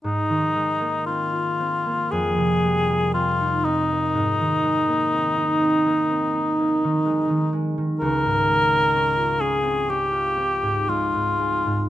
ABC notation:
X:1
M:4/4
L:1/16
Q:1/4=61
K:Ab
V:1 name="Cor anglais"
E4 F4 A4 F2 E2- | E12- E2 z2 | B6 A2 G4 F4 |]
V:2 name="Harp"
A,, E, A, B, C F C B, F,, C, G, B, C E C B, | A,, E, A, B, C E C B, C E B, E, A, E, A, E, | D,, A,, A, C D F D C D F C A,, A, A,, A, A,, |]